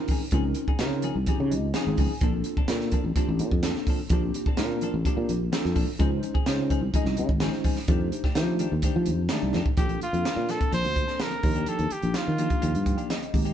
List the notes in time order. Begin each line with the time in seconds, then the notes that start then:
Already playing: C4 C#4 D#4 F4 A#4
0.08 F3 C4 D#4 G#4, kick, open hi-hat
0.22 muted clean electric guitar stroke
0.31 C#2 F3 C4 C#4 D#4 F4 G#4, kick, closed hi-hat
0.35 A#4
0.45 muted clean electric guitar stroke
0.54 muted clean electric guitar stroke, closed hi-hat
0.68 C4 D#4 G#4, muted fretless electric bass stroke, kick
0.79 C#3 C4 C#4 D#4 F4 A#4, muted clean electric guitar stroke, snare, closed hi-hat
1.02 F3 C4 D#4 G#4, closed hi-hat
1.16 C2, muted clean electric guitar stroke
1.26 F3 C4 C#4 D#4 F4 G4 G#4, kick, closed hi-hat
1.40 C#3, muted clean electric guitar stroke
1.51 C#2 D#5, muted clean electric guitar stroke, closed hi-hat
1.74 F3 C4 C#4 D#4 F4 G#4 F5, snare, closed hi-hat
1.87 G#1, muted clean electric guitar stroke
1.97 C#2 F3 C4 D#4 G#4 G#5, kick, open hi-hat
2.11 muted clean electric guitar stroke
2.21 A#1 F3 A#3 C4 D4 F4 A4, kick, closed hi-hat
2.35 muted clean electric guitar stroke
2.44 muted clean electric guitar stroke, closed hi-hat
2.57 C4 D4 A4, muted fretless electric bass stroke, kick
2.68 A#2 A#3 C4 D4 F4 A4, muted clean electric guitar stroke, snare, closed hi-hat
2.81 snare
2.92 F3 C4 D4 A4, kick, closed hi-hat
3.04 A1, muted clean electric guitar stroke
3.16 F3 A#3 C4 D4 F4 G4 A4, muted fretless electric bass stroke, kick, closed hi-hat
3.29 A1, muted clean electric guitar stroke
3.39 A#2, muted clean electric guitar stroke, closed hi-hat
3.51 F2, kick
3.63 F3 A#3 C4 D4 F4 A4, snare, closed hi-hat
3.76 muted clean electric guitar stroke, snare
3.87 F3 C4 D4 A4, kick, open hi-hat
4.00 muted clean electric guitar stroke
4.09 A#1 F3 A#3 C4 D4 F4 G4 A4, kick, closed hi-hat
4.24 muted clean electric guitar stroke
4.34 muted clean electric guitar stroke, closed hi-hat
4.46 C4 D4 A4, muted fretless electric bass stroke, kick
4.57 A#2 A#3 C4 D4 F4 A#4, muted clean electric guitar stroke, snare, closed hi-hat
4.81 F3 C4 D4 A4, closed hi-hat
4.94 A1, muted clean electric guitar stroke
5.05 F3 A#3 C4 D4 F4 G4 A4, kick, closed hi-hat
5.17 A#2, muted clean electric guitar stroke
5.29 A#1, muted clean electric guitar stroke, closed hi-hat
5.52 F3 A#3 C4 D4 F4 A4, snare, closed hi-hat
5.64 F2, muted clean electric guitar stroke, snare
5.75 A#1 F3 C4 D4 A4, kick, open hi-hat
5.87 muted clean electric guitar stroke, muted fretless electric bass stroke
5.99 C#2 F3 G#3 C4 C#4 D#4 F4 G#4 C5, kick, closed hi-hat
6.12 muted clean electric guitar stroke
6.23 muted clean electric guitar stroke, closed hi-hat
6.34 C4 D#4 G#4, muted fretless electric bass stroke, kick
6.46 C#3 G#3 C#4 D#4 F4 C5, muted clean electric guitar stroke, snare, closed hi-hat
6.70 F3 C4 D#4 G#4, kick, closed hi-hat
6.81 C2, muted clean electric guitar stroke
6.94 F3 G#3 C4 C#4 D#4 F4 G#4 D#5, muted fretless electric bass stroke, kick, closed hi-hat
7.06 C2, muted clean electric guitar stroke, snare
7.17 C#3, muted clean electric guitar stroke, closed hi-hat
7.29 G#1, kick
7.40 F3 G#3 C4 C#4 D#4 F4 G#4 C5, snare, closed hi-hat
7.53 muted clean electric guitar stroke, snare
7.64 F3 C4 D#4 G#4, kick, open hi-hat
7.76 muted clean electric guitar stroke, snare
7.88 F2 D#3 A3 D4 D#4 G4 C5, kick, closed hi-hat
8.01 muted clean electric guitar stroke
8.12 muted clean electric guitar stroke, closed hi-hat
8.24 A3 D4 G4, muted fretless electric bass stroke, kick, snare
8.35 F3 A3 D4 D#4 G4 C5, muted clean electric guitar stroke, snare, closed hi-hat
8.59 D#3 A3 D4 G4, closed hi-hat
8.72 D#2, muted clean electric guitar stroke
8.82 D#3 A3 D4 D#4 G4 C5, kick, closed hi-hat
8.96 F3, muted clean electric guitar stroke
9.06 F2, muted clean electric guitar stroke, closed hi-hat
9.29 D#3 A3 D4 D#4 G4, snare, closed hi-hat
9.33 D5
9.43 C2, muted clean electric guitar stroke
9.53 F2 D#3 A3 D4 G4, snare
9.66 muted clean electric guitar stroke, kick
9.77 A#1 F3 A#3 C4 D4 F4 G4 A4, kick, closed hi-hat
9.89 A#1, muted clean electric guitar stroke, closed hi-hat
10.01 F4, muted fretless electric bass stroke, muted clean electric guitar stroke, closed hi-hat
10.13 F2 A#3 C4 D4 F4 A4, closed hi-hat
10.25 A#3 C4 D4 F4 A#4, muted clean electric guitar stroke, snare, closed hi-hat
10.36 A#2
10.49 F3 C4 D4 A4, snare, closed hi-hat
10.61 muted clean electric guitar stroke, kick, closed hi-hat
10.72 A#1 F3 C4 D4 A4 C5, closed hi-hat
10.84 D2 A#3 C4 D4 F4 A4, closed hi-hat
10.96 muted clean electric guitar stroke, kick, closed hi-hat
11.08 C4 D4 A4, snare, closed hi-hat
11.19 F3 C4 D4 A4 A#4, snare, closed hi-hat
11.31 muted clean electric guitar stroke, closed hi-hat
11.43 D#2 F3 A#3 D4 D#4 G4, muted clean electric guitar stroke, kick, open hi-hat
11.55 A#3 D4 G4, closed hi-hat
11.66 F3 A#3 D4 G4 A4, closed hi-hat
11.79 D#2, muted clean electric guitar stroke, closed hi-hat
11.90 G4, muted clean electric guitar stroke, muted fretless electric bass stroke, closed hi-hat
12.02 A#1 F3 A#3 D4 D#4 G4, closed hi-hat
12.14 F4, muted clean electric guitar stroke, snare, closed hi-hat
12.28 D#3
12.38 F3 A#3 D4 D#4 G4, closed hi-hat
12.50 kick, closed hi-hat
12.61 D#2 F3 A#3 D4 G4, closed hi-hat
12.74 G2, muted clean electric guitar stroke, closed hi-hat
12.86 G5, muted clean electric guitar stroke, kick, closed hi-hat
12.97 A#3 D4 G4 F5, closed hi-hat
13.10 F3 A#3 D4 G4 D#5, snare, closed hi-hat
13.22 muted clean electric guitar stroke, closed hi-hat
13.33 G#1 G#3 A#3 C4 D#4 G4, muted clean electric guitar stroke, kick, open hi-hat
13.45 A#3 C4 G4, closed hi-hat